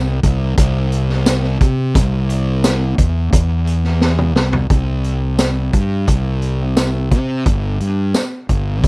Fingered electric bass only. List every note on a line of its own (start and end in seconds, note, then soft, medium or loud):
0.00 0.20 C2 medium
0.24 0.55 C2 loud
0.58 1.57 C2 loud
1.61 1.97 C3 medium
1.95 2.94 C2 medium
2.98 3.30 E2 medium
3.33 4.36 E2 medium
4.36 4.68 C2 medium
4.70 5.69 C2 medium
5.74 6.05 G2 medium
6.08 7.13 C2 medium
7.12 7.43 C3 medium
7.46 7.78 G1 medium
7.81 8.12 G2 medium
8.49 8.84 G1 medium
8.84 8.88 D2 medium